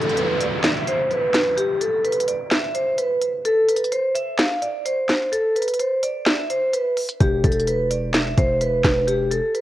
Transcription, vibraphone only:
Already playing: A4
0.17 B4
0.40 D5
0.64 E5
0.88 C5
1.10 B4
1.57 G4
1.81 A4
2.04 B4
2.28 D5
2.51 E5
2.75 C5
2.98 B4
3.45 A4
3.69 B4
3.92 C5
4.15 E5
4.39 F5
4.62 D5
4.86 C5
5.32 A4
5.56 B4
5.80 C5
6.03 D5
6.26 E5
6.50 C5
6.73 B4
7.20 G4
7.44 A4
7.67 B4
7.90 D5
8.14 E5
8.38 C5
8.61 B4
9.07 G4
9.31 A4
9.55 B4

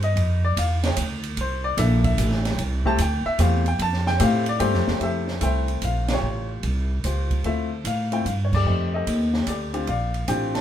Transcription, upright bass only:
Already playing: G2
0.16 F2
0.57 E2
0.97 D2
1.37 C2
1.77 A#1
2.18 A1
2.58 C2
2.98 D2
3.25 muted upright bass stroke
3.38 E2
3.79 F2
4.20 A2
4.60 G2
4.74 F2
4.88 E2
5.00 F2
5.41 C2
5.82 A#1
6.21 A1
6.63 C2
7.04 C#2
7.44 D2
7.84 A2
8.25 G2
8.65 F2
9.07 D#2
9.47 D2
9.87 A#1
10.28 A1

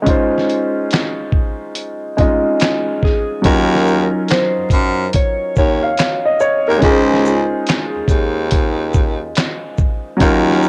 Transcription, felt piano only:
0.02 G#3 C#4 D#4
0.07 F4 C5
2.17 G#3 C#4 D#4 F4 D#5
3.42 F#3 C#4 D#4
3.46 F4 A#4
5.83 F5
6.25 D#5
6.40 C#5
6.68 A#4
6.78 G#3 C#4 D#4
6.83 F4 A#4
6.90 C5
10.17 F#3 C#4 D#4
10.22 F4 A#4

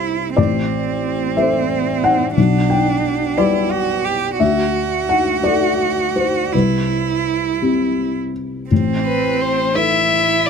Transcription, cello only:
Already playing: E4
0.37 C4
2.36 D4
3.37 E4
3.71 F#4
4.05 G4
4.39 F#4
6.53 E4
8.70 C4
9.75 E4

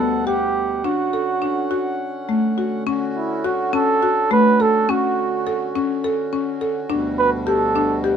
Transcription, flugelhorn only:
Already playing: A4
0.26 G4
0.85 F#4
3.17 E4
3.46 F#4
3.74 A4
4.32 B4
4.62 A4
4.90 F#4
7.18 B4
7.47 A4

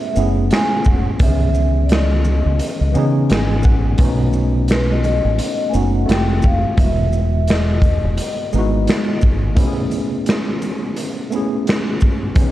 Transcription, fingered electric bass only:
0.17 F#1
0.87 E1
1.20 C#2
2.46 C#2
2.81 C#2
2.96 C#3
3.31 G#1
3.66 A1
3.99 B1
5.25 A1
5.75 F#1
6.09 F1
6.44 F1
6.78 E1
8.04 E1
8.54 G#1
9.24 G#1

